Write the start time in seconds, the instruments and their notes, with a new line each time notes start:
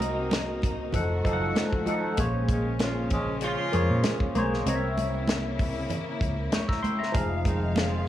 Already playing: fingered electric bass C2, string section C3 A#3 D#4, tine electric piano C4 F#4 A#4 D#5
0.00 closed hi-hat, muted conga
0.31 snare, closed hi-hat, high conga
0.62 kick, closed hi-hat, muted conga
0.92 fingered electric bass F1, string section D#3 A3 F#4, tine electric piano F3 D#4 A4 F#5, kick, closed hi-hat, low conga
1.24 fingered electric bass F#1, tine electric piano F3 D#4 A4 F5, kick, closed hi-hat
1.33 tine electric piano F#5
1.55 snare, closed hi-hat, high conga
1.73 kick
1.86 tine electric piano F3 D#4 A4 F#5, closed hi-hat, high conga
2.17 fingered electric bass A#1, string section C#3 G#3 C#4, tine electric piano A#3 G#4 C5 C#5, kick, closed hi-hat, muted conga
2.49 horn section C#3 F3 G#3 C#4, kick, closed hi-hat, muted conga
2.79 horn section F3 C#4 F4, snare, closed hi-hat, high conga
3.10 horn section C#3 F3 G#3 C#4, kick, closed hi-hat, low conga
3.41 horn section F3 C#4 F4, closed hi-hat
3.72 fingered electric bass F2, tine electric piano A#3 G#4 C5 C#5, closed hi-hat
3.90 fingered electric bass A#2
4.03 snare, closed hi-hat, high conga
4.20 kick
4.35 fingered electric bass B1, tine electric piano A#3 G#4 C5 C#5, closed hi-hat, high conga
4.54 snare
4.66 fingered electric bass C2, string section C#3 A#3 E4, tine electric piano C4 A#4 C#5 D#5, closed hi-hat, muted conga
4.75 tine electric piano E5
4.98 closed hi-hat, muted conga
5.28 snare, closed hi-hat, high conga
5.59 kick, open hi-hat, muted conga
5.90 closed hi-hat, low conga
6.21 fingered electric bass C#2, kick, closed hi-hat
6.52 tine electric piano C#6 G6, snare, closed hi-hat, high conga
6.68 tine electric piano A#5 E6, kick, snare
6.83 tine electric piano G5 C6, closed hi-hat, high conga
6.99 tine electric piano E5 A#5
7.03 snare
7.12 fingered electric bass F1, string section D#3 G#3 F5, tine electric piano F3 D#4 G#4 F5, kick, closed hi-hat, muted conga
7.45 horn section D#3 G#3 C4 D#4, kick, closed hi-hat, muted conga
7.76 horn section F3 G#3 C4 F4, snare, closed hi-hat, high conga